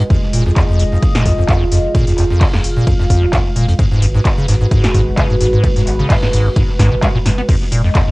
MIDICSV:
0, 0, Header, 1, 5, 480
1, 0, Start_track
1, 0, Tempo, 461538
1, 104, Time_signature, 4, 2, 24, 8
1, 8435, End_track
2, 0, Start_track
2, 0, Title_t, "Analog synth pad"
2, 0, Program_c, 0, 89
2, 0, Note_on_c, 0, 56, 90
2, 103, Note_on_c, 0, 65, 82
2, 103, Note_on_c, 0, 75, 98
2, 2004, Note_off_c, 0, 75, 0
2, 2024, Note_on_c, 0, 77, 95
2, 3902, Note_off_c, 0, 56, 0
2, 3905, Note_off_c, 0, 65, 0
2, 3925, Note_off_c, 0, 77, 0
2, 3943, Note_on_c, 0, 56, 91
2, 3943, Note_on_c, 0, 71, 101
2, 3944, Note_on_c, 0, 66, 83
2, 7745, Note_off_c, 0, 56, 0
2, 7745, Note_off_c, 0, 66, 0
2, 7745, Note_off_c, 0, 71, 0
2, 7784, Note_on_c, 0, 56, 89
2, 7784, Note_on_c, 0, 65, 83
2, 7784, Note_on_c, 0, 75, 100
2, 8435, Note_off_c, 0, 56, 0
2, 8435, Note_off_c, 0, 65, 0
2, 8435, Note_off_c, 0, 75, 0
2, 8435, End_track
3, 0, Start_track
3, 0, Title_t, "Acid bass"
3, 0, Program_c, 1, 38
3, 104, Note_on_c, 1, 41, 86
3, 175, Note_off_c, 1, 41, 0
3, 345, Note_on_c, 1, 46, 78
3, 451, Note_off_c, 1, 46, 0
3, 474, Note_on_c, 1, 41, 79
3, 534, Note_off_c, 1, 41, 0
3, 584, Note_on_c, 1, 41, 88
3, 655, Note_off_c, 1, 41, 0
3, 714, Note_on_c, 1, 41, 79
3, 824, Note_on_c, 1, 39, 101
3, 839, Note_off_c, 1, 41, 0
3, 867, Note_off_c, 1, 39, 0
3, 955, Note_on_c, 1, 41, 78
3, 1015, Note_off_c, 1, 41, 0
3, 1194, Note_on_c, 1, 46, 76
3, 1285, Note_off_c, 1, 46, 0
3, 1304, Note_on_c, 1, 41, 73
3, 1375, Note_off_c, 1, 41, 0
3, 1434, Note_on_c, 1, 41, 76
3, 1494, Note_off_c, 1, 41, 0
3, 1544, Note_on_c, 1, 41, 82
3, 1673, Note_on_c, 1, 39, 108
3, 1689, Note_off_c, 1, 41, 0
3, 1710, Note_off_c, 1, 39, 0
3, 1784, Note_on_c, 1, 41, 79
3, 1855, Note_off_c, 1, 41, 0
3, 2025, Note_on_c, 1, 46, 85
3, 2131, Note_off_c, 1, 46, 0
3, 2154, Note_on_c, 1, 41, 76
3, 2214, Note_off_c, 1, 41, 0
3, 2264, Note_on_c, 1, 41, 76
3, 2335, Note_off_c, 1, 41, 0
3, 2394, Note_on_c, 1, 41, 80
3, 2504, Note_on_c, 1, 39, 104
3, 2520, Note_off_c, 1, 41, 0
3, 2547, Note_off_c, 1, 39, 0
3, 2634, Note_on_c, 1, 41, 79
3, 2694, Note_off_c, 1, 41, 0
3, 2873, Note_on_c, 1, 46, 75
3, 2964, Note_off_c, 1, 46, 0
3, 2984, Note_on_c, 1, 41, 86
3, 3055, Note_off_c, 1, 41, 0
3, 3114, Note_on_c, 1, 41, 78
3, 3174, Note_off_c, 1, 41, 0
3, 3223, Note_on_c, 1, 41, 74
3, 3353, Note_on_c, 1, 39, 101
3, 3368, Note_off_c, 1, 41, 0
3, 3389, Note_off_c, 1, 39, 0
3, 3464, Note_on_c, 1, 41, 82
3, 3535, Note_off_c, 1, 41, 0
3, 3703, Note_on_c, 1, 46, 81
3, 3810, Note_off_c, 1, 46, 0
3, 3833, Note_on_c, 1, 41, 79
3, 3894, Note_off_c, 1, 41, 0
3, 3943, Note_on_c, 1, 44, 88
3, 4015, Note_off_c, 1, 44, 0
3, 4073, Note_on_c, 1, 44, 79
3, 4183, Note_on_c, 1, 42, 101
3, 4199, Note_off_c, 1, 44, 0
3, 4226, Note_off_c, 1, 42, 0
3, 4313, Note_on_c, 1, 44, 82
3, 4374, Note_off_c, 1, 44, 0
3, 4553, Note_on_c, 1, 49, 79
3, 4644, Note_off_c, 1, 49, 0
3, 4664, Note_on_c, 1, 44, 79
3, 4735, Note_off_c, 1, 44, 0
3, 4793, Note_on_c, 1, 44, 74
3, 4854, Note_off_c, 1, 44, 0
3, 4904, Note_on_c, 1, 44, 86
3, 5033, Note_on_c, 1, 42, 102
3, 5049, Note_off_c, 1, 44, 0
3, 5070, Note_off_c, 1, 42, 0
3, 5144, Note_on_c, 1, 44, 74
3, 5215, Note_off_c, 1, 44, 0
3, 5384, Note_on_c, 1, 49, 80
3, 5491, Note_off_c, 1, 49, 0
3, 5514, Note_on_c, 1, 44, 83
3, 5574, Note_off_c, 1, 44, 0
3, 5624, Note_on_c, 1, 44, 81
3, 5695, Note_off_c, 1, 44, 0
3, 5754, Note_on_c, 1, 44, 83
3, 5864, Note_on_c, 1, 42, 103
3, 5879, Note_off_c, 1, 44, 0
3, 5906, Note_off_c, 1, 42, 0
3, 5994, Note_on_c, 1, 44, 79
3, 6054, Note_off_c, 1, 44, 0
3, 6234, Note_on_c, 1, 49, 81
3, 6325, Note_off_c, 1, 49, 0
3, 6344, Note_on_c, 1, 44, 86
3, 6415, Note_off_c, 1, 44, 0
3, 6474, Note_on_c, 1, 44, 78
3, 6534, Note_off_c, 1, 44, 0
3, 6584, Note_on_c, 1, 44, 81
3, 6714, Note_on_c, 1, 42, 103
3, 6730, Note_off_c, 1, 44, 0
3, 6750, Note_off_c, 1, 42, 0
3, 6825, Note_on_c, 1, 44, 82
3, 6896, Note_off_c, 1, 44, 0
3, 7064, Note_on_c, 1, 44, 101
3, 7171, Note_off_c, 1, 44, 0
3, 7193, Note_on_c, 1, 47, 75
3, 7230, Note_off_c, 1, 47, 0
3, 7304, Note_on_c, 1, 56, 80
3, 7375, Note_off_c, 1, 56, 0
3, 7434, Note_on_c, 1, 46, 106
3, 7470, Note_off_c, 1, 46, 0
3, 7544, Note_on_c, 1, 44, 105
3, 7587, Note_off_c, 1, 44, 0
3, 7674, Note_on_c, 1, 59, 78
3, 7710, Note_off_c, 1, 59, 0
3, 7783, Note_on_c, 1, 41, 88
3, 7855, Note_off_c, 1, 41, 0
3, 8024, Note_on_c, 1, 46, 75
3, 8131, Note_off_c, 1, 46, 0
3, 8153, Note_on_c, 1, 41, 80
3, 8214, Note_off_c, 1, 41, 0
3, 8263, Note_on_c, 1, 41, 85
3, 8334, Note_off_c, 1, 41, 0
3, 8393, Note_on_c, 1, 41, 74
3, 8435, Note_off_c, 1, 41, 0
3, 8435, End_track
4, 0, Start_track
4, 0, Title_t, "Sub bass"
4, 0, Program_c, 2, 38
4, 343, Note_on_c, 2, 29, 97
4, 511, Note_off_c, 2, 29, 0
4, 823, Note_on_c, 2, 29, 90
4, 991, Note_off_c, 2, 29, 0
4, 1304, Note_on_c, 2, 29, 94
4, 1472, Note_off_c, 2, 29, 0
4, 1783, Note_on_c, 2, 29, 88
4, 1951, Note_off_c, 2, 29, 0
4, 2264, Note_on_c, 2, 29, 101
4, 2432, Note_off_c, 2, 29, 0
4, 2743, Note_on_c, 2, 29, 91
4, 2911, Note_off_c, 2, 29, 0
4, 3224, Note_on_c, 2, 29, 99
4, 3392, Note_off_c, 2, 29, 0
4, 3704, Note_on_c, 2, 29, 90
4, 3871, Note_off_c, 2, 29, 0
4, 4183, Note_on_c, 2, 32, 99
4, 4351, Note_off_c, 2, 32, 0
4, 4663, Note_on_c, 2, 32, 95
4, 4831, Note_off_c, 2, 32, 0
4, 5144, Note_on_c, 2, 32, 98
4, 5311, Note_off_c, 2, 32, 0
4, 5623, Note_on_c, 2, 32, 90
4, 5791, Note_off_c, 2, 32, 0
4, 6104, Note_on_c, 2, 32, 101
4, 6272, Note_off_c, 2, 32, 0
4, 6585, Note_on_c, 2, 32, 91
4, 6752, Note_off_c, 2, 32, 0
4, 7064, Note_on_c, 2, 32, 102
4, 7232, Note_off_c, 2, 32, 0
4, 7544, Note_on_c, 2, 30, 84
4, 7712, Note_off_c, 2, 30, 0
4, 8024, Note_on_c, 2, 29, 104
4, 8192, Note_off_c, 2, 29, 0
4, 8435, End_track
5, 0, Start_track
5, 0, Title_t, "Drums"
5, 101, Note_on_c, 9, 82, 88
5, 104, Note_on_c, 9, 36, 121
5, 104, Note_on_c, 9, 51, 66
5, 205, Note_off_c, 9, 82, 0
5, 208, Note_off_c, 9, 36, 0
5, 208, Note_off_c, 9, 51, 0
5, 235, Note_on_c, 9, 38, 41
5, 339, Note_off_c, 9, 38, 0
5, 344, Note_on_c, 9, 46, 114
5, 448, Note_off_c, 9, 46, 0
5, 464, Note_on_c, 9, 38, 39
5, 568, Note_off_c, 9, 38, 0
5, 584, Note_on_c, 9, 36, 126
5, 584, Note_on_c, 9, 51, 64
5, 585, Note_on_c, 9, 82, 93
5, 586, Note_on_c, 9, 38, 120
5, 587, Note_on_c, 9, 39, 119
5, 688, Note_off_c, 9, 36, 0
5, 688, Note_off_c, 9, 51, 0
5, 689, Note_off_c, 9, 82, 0
5, 690, Note_off_c, 9, 38, 0
5, 691, Note_off_c, 9, 39, 0
5, 824, Note_on_c, 9, 46, 108
5, 827, Note_on_c, 9, 82, 72
5, 928, Note_off_c, 9, 46, 0
5, 931, Note_off_c, 9, 82, 0
5, 1064, Note_on_c, 9, 36, 122
5, 1064, Note_on_c, 9, 51, 68
5, 1067, Note_on_c, 9, 82, 83
5, 1168, Note_off_c, 9, 36, 0
5, 1168, Note_off_c, 9, 51, 0
5, 1171, Note_off_c, 9, 82, 0
5, 1194, Note_on_c, 9, 38, 89
5, 1194, Note_on_c, 9, 46, 64
5, 1298, Note_off_c, 9, 38, 0
5, 1298, Note_off_c, 9, 46, 0
5, 1304, Note_on_c, 9, 36, 62
5, 1304, Note_on_c, 9, 46, 105
5, 1408, Note_off_c, 9, 36, 0
5, 1408, Note_off_c, 9, 46, 0
5, 1544, Note_on_c, 9, 36, 120
5, 1545, Note_on_c, 9, 38, 112
5, 1545, Note_on_c, 9, 51, 63
5, 1548, Note_on_c, 9, 39, 108
5, 1551, Note_on_c, 9, 82, 77
5, 1648, Note_off_c, 9, 36, 0
5, 1649, Note_off_c, 9, 38, 0
5, 1649, Note_off_c, 9, 51, 0
5, 1652, Note_off_c, 9, 39, 0
5, 1655, Note_off_c, 9, 82, 0
5, 1784, Note_on_c, 9, 46, 111
5, 1790, Note_on_c, 9, 38, 49
5, 1888, Note_off_c, 9, 46, 0
5, 1894, Note_off_c, 9, 38, 0
5, 2024, Note_on_c, 9, 36, 119
5, 2024, Note_on_c, 9, 51, 72
5, 2029, Note_on_c, 9, 82, 83
5, 2128, Note_off_c, 9, 36, 0
5, 2128, Note_off_c, 9, 51, 0
5, 2133, Note_off_c, 9, 82, 0
5, 2152, Note_on_c, 9, 38, 41
5, 2154, Note_on_c, 9, 46, 61
5, 2256, Note_off_c, 9, 38, 0
5, 2258, Note_off_c, 9, 46, 0
5, 2258, Note_on_c, 9, 82, 64
5, 2265, Note_on_c, 9, 46, 107
5, 2268, Note_on_c, 9, 39, 37
5, 2362, Note_off_c, 9, 82, 0
5, 2369, Note_off_c, 9, 46, 0
5, 2372, Note_off_c, 9, 39, 0
5, 2393, Note_on_c, 9, 38, 45
5, 2497, Note_off_c, 9, 38, 0
5, 2503, Note_on_c, 9, 38, 125
5, 2504, Note_on_c, 9, 36, 121
5, 2504, Note_on_c, 9, 51, 66
5, 2508, Note_on_c, 9, 39, 114
5, 2510, Note_on_c, 9, 46, 83
5, 2607, Note_off_c, 9, 38, 0
5, 2608, Note_off_c, 9, 36, 0
5, 2608, Note_off_c, 9, 51, 0
5, 2612, Note_off_c, 9, 39, 0
5, 2614, Note_off_c, 9, 46, 0
5, 2634, Note_on_c, 9, 38, 67
5, 2738, Note_off_c, 9, 38, 0
5, 2745, Note_on_c, 9, 46, 106
5, 2849, Note_off_c, 9, 46, 0
5, 2982, Note_on_c, 9, 82, 90
5, 2984, Note_on_c, 9, 36, 117
5, 2985, Note_on_c, 9, 51, 70
5, 3086, Note_off_c, 9, 82, 0
5, 3088, Note_off_c, 9, 36, 0
5, 3089, Note_off_c, 9, 51, 0
5, 3111, Note_on_c, 9, 38, 49
5, 3215, Note_off_c, 9, 38, 0
5, 3219, Note_on_c, 9, 82, 71
5, 3224, Note_on_c, 9, 36, 61
5, 3225, Note_on_c, 9, 46, 100
5, 3323, Note_off_c, 9, 82, 0
5, 3328, Note_off_c, 9, 36, 0
5, 3329, Note_off_c, 9, 46, 0
5, 3460, Note_on_c, 9, 82, 89
5, 3463, Note_on_c, 9, 38, 124
5, 3464, Note_on_c, 9, 36, 114
5, 3465, Note_on_c, 9, 51, 66
5, 3469, Note_on_c, 9, 39, 108
5, 3564, Note_off_c, 9, 82, 0
5, 3567, Note_off_c, 9, 38, 0
5, 3568, Note_off_c, 9, 36, 0
5, 3569, Note_off_c, 9, 51, 0
5, 3573, Note_off_c, 9, 39, 0
5, 3699, Note_on_c, 9, 82, 72
5, 3705, Note_on_c, 9, 46, 105
5, 3803, Note_off_c, 9, 82, 0
5, 3809, Note_off_c, 9, 46, 0
5, 3836, Note_on_c, 9, 42, 47
5, 3937, Note_on_c, 9, 82, 97
5, 3940, Note_off_c, 9, 42, 0
5, 3943, Note_on_c, 9, 36, 121
5, 3945, Note_on_c, 9, 51, 73
5, 4041, Note_off_c, 9, 82, 0
5, 4047, Note_off_c, 9, 36, 0
5, 4049, Note_off_c, 9, 51, 0
5, 4083, Note_on_c, 9, 38, 42
5, 4185, Note_on_c, 9, 46, 107
5, 4187, Note_off_c, 9, 38, 0
5, 4289, Note_off_c, 9, 46, 0
5, 4320, Note_on_c, 9, 38, 41
5, 4422, Note_on_c, 9, 82, 85
5, 4423, Note_on_c, 9, 36, 123
5, 4424, Note_off_c, 9, 38, 0
5, 4425, Note_on_c, 9, 51, 73
5, 4428, Note_on_c, 9, 39, 114
5, 4430, Note_on_c, 9, 38, 111
5, 4526, Note_off_c, 9, 82, 0
5, 4527, Note_off_c, 9, 36, 0
5, 4529, Note_off_c, 9, 51, 0
5, 4532, Note_off_c, 9, 39, 0
5, 4534, Note_off_c, 9, 38, 0
5, 4665, Note_on_c, 9, 46, 108
5, 4667, Note_on_c, 9, 38, 110
5, 4769, Note_off_c, 9, 46, 0
5, 4771, Note_off_c, 9, 38, 0
5, 4904, Note_on_c, 9, 36, 115
5, 4905, Note_on_c, 9, 51, 74
5, 4907, Note_on_c, 9, 82, 65
5, 5008, Note_off_c, 9, 36, 0
5, 5009, Note_off_c, 9, 51, 0
5, 5011, Note_off_c, 9, 82, 0
5, 5035, Note_on_c, 9, 38, 91
5, 5035, Note_on_c, 9, 46, 61
5, 5139, Note_off_c, 9, 38, 0
5, 5139, Note_off_c, 9, 46, 0
5, 5144, Note_on_c, 9, 36, 62
5, 5145, Note_on_c, 9, 46, 100
5, 5156, Note_on_c, 9, 82, 70
5, 5248, Note_off_c, 9, 36, 0
5, 5249, Note_off_c, 9, 46, 0
5, 5260, Note_off_c, 9, 82, 0
5, 5384, Note_on_c, 9, 36, 116
5, 5384, Note_on_c, 9, 51, 65
5, 5385, Note_on_c, 9, 82, 88
5, 5386, Note_on_c, 9, 38, 124
5, 5388, Note_on_c, 9, 39, 115
5, 5488, Note_off_c, 9, 36, 0
5, 5488, Note_off_c, 9, 51, 0
5, 5489, Note_off_c, 9, 82, 0
5, 5490, Note_off_c, 9, 38, 0
5, 5492, Note_off_c, 9, 39, 0
5, 5621, Note_on_c, 9, 82, 75
5, 5622, Note_on_c, 9, 38, 52
5, 5624, Note_on_c, 9, 46, 103
5, 5725, Note_off_c, 9, 82, 0
5, 5726, Note_off_c, 9, 38, 0
5, 5728, Note_off_c, 9, 46, 0
5, 5864, Note_on_c, 9, 36, 123
5, 5864, Note_on_c, 9, 51, 76
5, 5865, Note_on_c, 9, 82, 90
5, 5968, Note_off_c, 9, 36, 0
5, 5968, Note_off_c, 9, 51, 0
5, 5969, Note_off_c, 9, 82, 0
5, 5995, Note_on_c, 9, 38, 42
5, 5995, Note_on_c, 9, 46, 60
5, 6099, Note_off_c, 9, 38, 0
5, 6099, Note_off_c, 9, 46, 0
5, 6105, Note_on_c, 9, 46, 110
5, 6108, Note_on_c, 9, 39, 40
5, 6209, Note_off_c, 9, 46, 0
5, 6212, Note_off_c, 9, 39, 0
5, 6231, Note_on_c, 9, 38, 52
5, 6335, Note_off_c, 9, 38, 0
5, 6344, Note_on_c, 9, 36, 120
5, 6345, Note_on_c, 9, 51, 72
5, 6346, Note_on_c, 9, 46, 80
5, 6348, Note_on_c, 9, 39, 123
5, 6351, Note_on_c, 9, 38, 117
5, 6448, Note_off_c, 9, 36, 0
5, 6449, Note_off_c, 9, 51, 0
5, 6450, Note_off_c, 9, 46, 0
5, 6452, Note_off_c, 9, 39, 0
5, 6455, Note_off_c, 9, 38, 0
5, 6475, Note_on_c, 9, 38, 66
5, 6579, Note_off_c, 9, 38, 0
5, 6585, Note_on_c, 9, 46, 108
5, 6689, Note_off_c, 9, 46, 0
5, 6818, Note_on_c, 9, 82, 96
5, 6824, Note_on_c, 9, 36, 115
5, 6825, Note_on_c, 9, 51, 73
5, 6922, Note_off_c, 9, 82, 0
5, 6928, Note_off_c, 9, 36, 0
5, 6929, Note_off_c, 9, 51, 0
5, 6952, Note_on_c, 9, 38, 46
5, 7056, Note_off_c, 9, 38, 0
5, 7064, Note_on_c, 9, 36, 59
5, 7065, Note_on_c, 9, 38, 85
5, 7065, Note_on_c, 9, 46, 98
5, 7072, Note_on_c, 9, 82, 67
5, 7168, Note_off_c, 9, 36, 0
5, 7169, Note_off_c, 9, 38, 0
5, 7169, Note_off_c, 9, 46, 0
5, 7176, Note_off_c, 9, 82, 0
5, 7298, Note_on_c, 9, 38, 118
5, 7299, Note_on_c, 9, 82, 90
5, 7304, Note_on_c, 9, 36, 116
5, 7305, Note_on_c, 9, 51, 66
5, 7309, Note_on_c, 9, 39, 115
5, 7402, Note_off_c, 9, 38, 0
5, 7403, Note_off_c, 9, 82, 0
5, 7408, Note_off_c, 9, 36, 0
5, 7409, Note_off_c, 9, 51, 0
5, 7413, Note_off_c, 9, 39, 0
5, 7545, Note_on_c, 9, 38, 65
5, 7545, Note_on_c, 9, 46, 107
5, 7649, Note_off_c, 9, 38, 0
5, 7649, Note_off_c, 9, 46, 0
5, 7675, Note_on_c, 9, 42, 40
5, 7779, Note_off_c, 9, 42, 0
5, 7780, Note_on_c, 9, 82, 96
5, 7784, Note_on_c, 9, 36, 121
5, 7785, Note_on_c, 9, 49, 81
5, 7785, Note_on_c, 9, 51, 71
5, 7884, Note_off_c, 9, 82, 0
5, 7888, Note_off_c, 9, 36, 0
5, 7889, Note_off_c, 9, 49, 0
5, 7889, Note_off_c, 9, 51, 0
5, 7911, Note_on_c, 9, 38, 39
5, 8015, Note_off_c, 9, 38, 0
5, 8025, Note_on_c, 9, 46, 115
5, 8129, Note_off_c, 9, 46, 0
5, 8154, Note_on_c, 9, 38, 43
5, 8258, Note_off_c, 9, 38, 0
5, 8264, Note_on_c, 9, 36, 127
5, 8265, Note_on_c, 9, 38, 110
5, 8265, Note_on_c, 9, 51, 72
5, 8268, Note_on_c, 9, 39, 127
5, 8268, Note_on_c, 9, 82, 85
5, 8368, Note_off_c, 9, 36, 0
5, 8369, Note_off_c, 9, 38, 0
5, 8369, Note_off_c, 9, 51, 0
5, 8372, Note_off_c, 9, 39, 0
5, 8372, Note_off_c, 9, 82, 0
5, 8435, End_track
0, 0, End_of_file